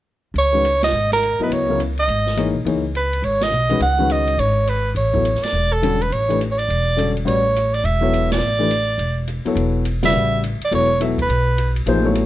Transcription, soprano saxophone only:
0.38 0.80 C#5 medium
0.84 1.10 D#5 medium
1.13 1.39 A#4 medium
1.43 1.54 B4 medium
1.53 1.80 C#5 medium
1.99 2.52 D#5 medium
2.97 3.26 B4 medium
3.24 3.44 C#5 medium
3.43 3.82 D#5 loud
3.82 4.13 F#5 medium
4.12 4.41 D#5 medium
4.39 4.71 C#5 medium
4.69 4.91 B4 medium
4.97 5.45 C#5 medium
5.44 5.74 D5 medium
5.72 6.03 A4 medium
6.02 6.14 B4 medium
6.13 6.41 C#5 medium
6.52 6.60 C#5 medium
6.58 7.16 D5 medium
7.27 7.76 C#5 medium
7.74 7.87 D5 medium
7.85 8.31 E5 medium
8.32 9.25 D5 medium
10.06 10.41 E5 medium
10.64 10.73 D5 medium
10.75 11.00 C#5 medium
11.22 11.74 B4 medium

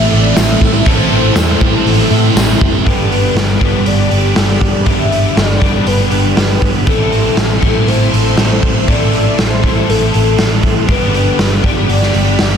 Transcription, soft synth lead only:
0.00 0.13 E5 loud
0.12 0.38 D5 loud
0.37 0.89 E5 loud
0.87 2.36 C5 medium
2.86 3.82 B4 medium
3.87 4.33 D5 medium
4.37 4.87 D5 medium
4.86 5.38 E5 medium
5.36 5.88 D5 loud
5.87 6.36 B4 medium
6.37 6.72 B4 medium
6.88 7.89 A4 medium
7.88 8.38 C5 medium
8.39 8.90 C5 medium
8.88 9.13 D5 medium
9.13 9.40 D5 medium
9.38 9.91 C5 loud
9.89 10.14 A4 medium
10.15 10.37 A4 medium
10.91 11.66 B4 medium
11.65 12.39 D5 loud
12.40 12.57 D5 loud

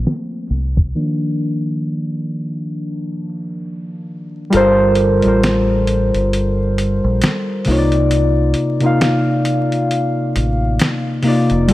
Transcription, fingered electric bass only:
0.51 0.92 C2 medium
4.54 5.21 G1 loud
5.25 6.10 A1 medium
6.14 6.99 G1 medium
7.04 7.21 A#1 medium
7.68 8.53 C2 loud
10.36 10.77 A1 loud
11.51 11.70 F1 medium
11.70 11.73 G1 loud

